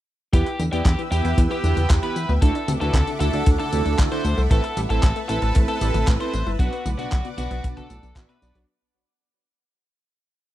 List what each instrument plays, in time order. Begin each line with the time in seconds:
0.33 analog synth bass E2, synth arpeggio sound E3, analog polysynth B3 E4 G4 B4, lead electric guitar G4, analog synth pad B4 E5 G5 E6, kick, closed hi-hat, tambourine
0.46 synth arpeggio sound E4, closed hi-hat, tambourine
0.60 analog synth bass E2, synth arpeggio sound D3, closed hi-hat, tambourine
0.73 analog synth bass E2, synth arpeggio sound E3, analog polysynth B3 E4 G4 D5, lead electric guitar G4, closed hi-hat, tambourine
0.85 analog synth bass E2, synth arpeggio sound D3, kick, clap, closed hi-hat, tambourine
0.99 synth arpeggio sound E3, closed hi-hat, tambourine
1.12 analog synth bass E2, synth arpeggio sound E3, analog polysynth B3 E4 G4 B4, lead electric guitar G4, closed hi-hat, tambourine
1.25 analog synth bass E2, synth arpeggio sound E4, closed hi-hat, tambourine
1.38 analog synth bass E2, synth arpeggio sound E3, kick, closed hi-hat, tambourine
1.51 synth arpeggio sound E3, lead electric guitar G4, closed hi-hat, tambourine
1.64 analog synth bass E2, synth arpeggio sound D3, analog polysynth B3 E4 G4 B4, closed hi-hat, tambourine
1.77 analog synth bass E2, synth arpeggio sound E3, closed hi-hat, high tom, tambourine
1.90 analog synth bass E2, synth arpeggio sound E4, kick, clap, closed hi-hat, tambourine
2.03 synth arpeggio sound E3, analog polysynth B3 E4 G4 B4, lead electric guitar B4, closed hi-hat, tambourine
2.16 analog synth bass E2, synth arpeggio sound E3, closed hi-hat, tambourine
2.29 analog synth bass D2, synth arpeggio sound B3, tambourine
2.42 analog synth bass D2, synth arpeggio sound D3, analog polysynth D4 E4 F#4 A4, lead electric guitar A4, analog synth pad A4 F#5 D6, kick, closed hi-hat, tambourine
2.55 synth arpeggio sound D4, closed hi-hat, tambourine
2.68 analog synth bass D2, synth arpeggio sound C3, closed hi-hat, high tom, tambourine
2.81 analog synth bass D2, synth arpeggio sound D3, analog polysynth D4 E4 F#4 B4, lead electric guitar A4, closed hi-hat, tambourine
2.93 analog synth bass D2, synth arpeggio sound C3, kick, clap, closed hi-hat, high tom, tambourine
3.07 synth arpeggio sound D3, closed hi-hat, tambourine
3.20 analog synth bass D2, synth arpeggio sound D3, analog polysynth D4 E4 F#4 A4, lead electric guitar A4, closed hi-hat, high tom, tambourine
3.33 analog synth bass D2, synth arpeggio sound D4, closed hi-hat, tambourine
3.46 analog synth bass D2, synth arpeggio sound D3, kick, closed hi-hat, tambourine
3.60 synth arpeggio sound D3, lead electric guitar A4, closed hi-hat, high tom, tambourine
3.73 analog synth bass D2, synth arpeggio sound C3, analog polysynth D4 E4 F#4 A4, closed hi-hat, tambourine
3.86 analog synth bass D2, synth arpeggio sound D3, closed hi-hat, tambourine
3.99 analog synth bass D2, synth arpeggio sound D4, kick, clap, closed hi-hat, tambourine
4.12 synth arpeggio sound D3, analog polysynth D4 E4 F#4 A4, lead electric guitar C5, closed hi-hat, tambourine
4.25 analog synth bass D2, synth arpeggio sound D3, closed hi-hat, tambourine
4.38 analog synth bass C2, synth arpeggio sound A3, tambourine
4.51 analog synth bass A1, synth arpeggio sound A3, analog polysynth C4 E4 A4 B4, lead electric guitar A4, analog synth pad B4 A5, kick, closed hi-hat, tambourine
4.64 synth arpeggio sound A4, closed hi-hat, tambourine
4.77 analog synth bass A1, synth arpeggio sound G3, closed hi-hat, tambourine
4.90 analog synth bass A1, synth arpeggio sound A3, analog polysynth C4 E4 A4 C5, lead electric guitar A4, closed hi-hat, tambourine
5.03 analog synth bass A1, synth arpeggio sound G3, kick, clap, closed hi-hat, tambourine
5.16 synth arpeggio sound A3, closed hi-hat, tambourine
5.29 analog synth bass A1, synth arpeggio sound A3, analog polysynth C4 E4 A4 B4, lead electric guitar A4, closed hi-hat, tambourine
5.42 analog synth bass A1, synth arpeggio sound A4, closed hi-hat, tambourine
5.55 analog synth bass A1, synth arpeggio sound A3, kick, closed hi-hat, tambourine
5.68 synth arpeggio sound A3, lead electric guitar A4, closed hi-hat, tambourine
5.81 analog synth bass A1, synth arpeggio sound G3, analog polysynth C4 E4 A4 B4, closed hi-hat, tambourine
5.94 analog synth bass A1, synth arpeggio sound A3, closed hi-hat, high tom, tambourine
6.07 analog synth bass A1, synth arpeggio sound A4, kick, clap, closed hi-hat, tambourine
6.20 synth arpeggio sound A3, analog polysynth C4 E4 A4 B4, lead electric guitar C5, closed hi-hat, tambourine
6.33 analog synth bass A1, synth arpeggio sound A3, closed hi-hat, tambourine
6.46 analog synth bass G1, synth arpeggio sound E4, tambourine
6.59 analog synth bass B1, synth arpeggio sound B2, analog polysynth B3 D4 F#4 B4, lead electric guitar F#4, analog synth pad D5 F#5 D6, kick, closed hi-hat, tambourine
6.73 synth arpeggio sound B3, closed hi-hat, tambourine
6.86 analog synth bass B1, synth arpeggio sound A2, closed hi-hat, high tom, tambourine
6.99 analog synth bass B1, synth arpeggio sound B2, analog polysynth B3 D4 F#4 D5, lead electric guitar F#4, closed hi-hat, tambourine
7.12 analog synth bass B1, synth arpeggio sound A2, kick, clap, closed hi-hat, high tom, tambourine
7.25 synth arpeggio sound B2, closed hi-hat, tambourine
7.38 analog synth bass B1, synth arpeggio sound B2, analog polysynth B3 D4 F#4 B4, lead electric guitar F#4, closed hi-hat, high tom, tambourine
7.51 analog synth bass B1, synth arpeggio sound B3, closed hi-hat, tambourine
7.64 analog synth bass B1, synth arpeggio sound B2, kick, closed hi-hat, tambourine
7.77 synth arpeggio sound B2, lead electric guitar A4, kick, closed hi-hat, high tom, tambourine
7.90 analog synth bass B1, synth arpeggio sound A2, closed hi-hat, tambourine
8.03 analog synth bass B1, synth arpeggio sound B2, closed hi-hat, tambourine
8.16 analog synth bass A1, synth arpeggio sound B3, analog polysynth B3 D4 F#4 E5, kick, clap, closed hi-hat, tambourine
8.29 synth arpeggio sound B2, lead electric guitar B4, closed hi-hat, tambourine
8.42 analog synth bass B1, synth arpeggio sound B2, analog polysynth B3 D4 F#4 D5, closed hi-hat, tambourine
8.55 analog synth bass B1, synth arpeggio sound F#3, closed hi-hat, tambourine